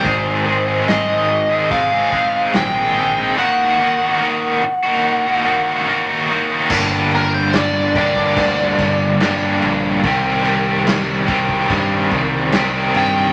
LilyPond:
<<
  \new Staff \with { instrumentName = "Lead electric guitar" } { \time 4/4 \key ees \lydian \tempo 4 = 72 c''4 ees''4 f''4 g''4 | ges''2.~ ges''8 r8 | \key g \minor r8 bes'16 c''16 d''8 d''2~ d''8~ | d''8 r2. g''8 | }
  \new Staff \with { instrumentName = "Overdriven electric guitar" } { \time 4/4 \key ees \lydian <aes, ees aes c' ees' aes'>8 <aes c' ees' aes'>16 <aes c' ees' aes'>16 <aes, ees aes c' ees' aes'>8. <aes c' ees' aes'>8 <aes c' ees' aes'>16 <aes c' ees' aes'>8 <aes, ees aes c' ees' aes'>16 <aes c' ees' aes'>16 <aes c' ees' aes'>16 <aes c' ees' aes'>16 | <ees bes ees' ges'>8 <ees bes ees' ges'>16 <bes ees' ges'>16 <ees bes ees' ges'>8. <bes ees' ges'>8 <bes ees' ges'>16 <ees bes ees' ges'>8 <ees bes ees' ges'>16 <bes ees' ges'>16 <ees bes ees' ges'>16 <bes ees' ges'>16 | \key g \minor <g, d g bes d' g'>4. <g, d g bes d' g'>4. <g, d g bes d' g'>4 | <c ees g c' g'>4. <c ees g c' g'>4. <c ees g c' g'>4 | }
  \new Staff \with { instrumentName = "Picked electric bass" } { \clef bass \time 4/4 \key ees \lydian aes,,8 aes,,2 r8 bes,,4 | r1 | \key g \minor g,,2 d,8 g,,4 bes,,8 | c,2 g,8 c,4 g,8 | }
  \new DrumStaff \with { instrumentName = "Drums" } \drummode { \time 4/4 <hho bd>4 <hho sn>4 <hho bd>8 bd8 <hho sn>4 | r4 r4 r4 r4 | <cymc bd>8 cymc8 <cymc sn>8 <cymc bd>16 bd16 <cymc bd>16 sn16 <cymc bd>8 <cymc sn>8 cymc8 | <cymc bd>8 cymc8 <cymc sn>8 <cymc bd>16 bd16 <cymc bd>8 <cymc bd>8 <cymc sn>8 cymc16 sn16 | }
>>